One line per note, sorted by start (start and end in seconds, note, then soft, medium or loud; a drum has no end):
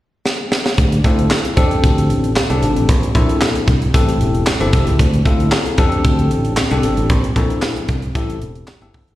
0.26 snare medium
0.52 snare medium
0.66 snare loud
0.78 0.99 D2 loud
0.78 kick loud
0.78 closed hi-hat medium
0.92 closed hi-hat medium
1.04 1.25 D2 loud
1.04 1.56 C4 medium
1.04 1.57 E4 medium
1.04 1.57 F4 medium
1.04 1.56 A4 medium
1.04 kick medium
1.04 closed hi-hat medium
1.19 closed hi-hat soft
1.30 snare loud
1.30 clap medium
1.45 closed hi-hat soft
1.57 1.78 F2 loud
1.57 2.31 C4 medium
1.57 2.31 D4 medium
1.57 2.31 G4 medium
1.57 2.31 A4 loud
1.57 kick loud
1.57 closed hi-hat medium
1.71 closed hi-hat soft
1.84 2.10 D2 medium
1.84 kick loud
1.84 closed hi-hat medium
1.98 closed hi-hat medium
2.10 2.31 A1 medium
2.10 closed hi-hat medium
2.24 closed hi-hat soft
2.36 snare loud
2.36 clap medium
2.50 2.60 C2 medium
2.50 2.89 C4 medium
2.50 2.89 D4 medium
2.50 2.89 G4 medium
2.50 2.89 A4 medium
2.50 closed hi-hat soft
2.62 2.73 G#1 medium
2.62 closed hi-hat medium
2.76 2.86 A1 medium
2.76 closed hi-hat medium
2.89 3.10 A#1 loud
2.89 kick loud
2.89 closed hi-hat medium
3.03 closed hi-hat soft
3.15 3.36 A#1 loud
3.15 3.74 C4 medium
3.15 3.74 D4 medium
3.15 3.74 E4 medium
3.15 3.74 A4 medium
3.15 kick medium
3.15 closed hi-hat medium
3.29 closed hi-hat soft
3.41 snare loud
3.41 clap medium
3.55 closed hi-hat soft
3.68 3.89 C2 medium
3.68 kick loud
3.68 closed hi-hat medium
3.82 closed hi-hat soft
3.94 4.15 A1 loud
3.94 4.43 C4 medium
3.94 4.43 E4 medium
3.94 4.43 G4 medium
3.94 4.43 A4 loud
3.94 kick loud
3.94 closed hi-hat medium
4.09 closed hi-hat medium
4.21 4.42 E1 medium
4.21 closed hi-hat medium
4.34 closed hi-hat soft
4.46 snare loud
4.46 clap medium
4.60 4.71 G1 medium
4.60 4.99 C4 medium
4.60 4.99 E4 medium
4.60 4.99 G4 medium
4.60 5.00 A4 loud
4.60 closed hi-hat soft
4.73 4.84 C2 medium
4.73 kick loud
4.73 closed hi-hat medium
4.87 4.97 C#2 medium
4.87 closed hi-hat medium
4.99 5.20 D2 loud
4.99 kick loud
4.99 closed hi-hat medium
5.14 closed hi-hat soft
5.25 5.47 D2 medium
5.25 5.77 C4 medium
5.25 5.78 E4 medium
5.25 5.78 F4 medium
5.25 5.78 A4 medium
5.25 kick medium
5.25 closed hi-hat medium
5.40 closed hi-hat soft
5.52 snare loud
5.52 clap medium
5.66 closed hi-hat soft
5.78 5.99 F2 loud
5.78 6.52 C4 medium
5.78 6.52 D4 medium
5.78 6.53 G4 medium
5.78 6.53 A4 loud
5.78 kick medium
5.78 closed hi-hat medium
5.92 closed hi-hat soft
6.04 6.31 D2 medium
6.04 kick loud
6.04 closed hi-hat medium
6.19 closed hi-hat soft
6.31 6.52 A1 medium
6.31 closed hi-hat medium
6.45 closed hi-hat soft
6.57 snare loud
6.57 clap medium
6.71 6.81 C2 medium
6.71 7.10 C4 medium
6.71 7.10 D4 medium
6.71 7.10 G4 medium
6.71 7.10 A4 loud
6.71 closed hi-hat soft
6.83 6.95 G#1 medium
6.83 closed hi-hat medium
6.97 7.07 A1 medium
6.97 closed hi-hat medium
7.10 7.31 A#1 loud
7.10 kick loud
7.10 closed hi-hat medium
7.24 closed hi-hat soft
7.36 7.57 A#1 loud
7.36 7.95 C4 medium
7.36 7.95 D4 medium
7.36 7.95 E4 medium
7.36 7.95 A4 medium
7.36 kick medium
7.36 closed hi-hat medium
7.50 closed hi-hat soft
7.62 snare loud
7.62 clap medium
7.76 closed hi-hat soft
7.88 8.10 C2 medium
7.88 kick medium
7.88 closed hi-hat medium
8.02 closed hi-hat soft
8.15 8.36 A1 medium
8.15 8.64 C4 medium
8.15 8.64 E4 medium
8.15 8.64 G4 medium
8.15 8.64 A4 medium
8.15 kick loud
8.15 closed hi-hat medium
8.30 closed hi-hat medium
8.41 8.63 E1 medium
8.41 closed hi-hat medium
8.55 closed hi-hat soft
8.67 snare loud
8.67 clap medium
8.81 8.92 G1 medium
8.81 9.15 C4 medium
8.81 9.15 E4 medium
8.81 9.15 G4 medium
8.81 9.15 A4 loud
8.81 closed hi-hat soft
8.94 9.05 G1 medium
8.94 kick loud
8.94 open hi-hat medium
9.08 9.15 G#1 medium
9.08 closed hi-hat medium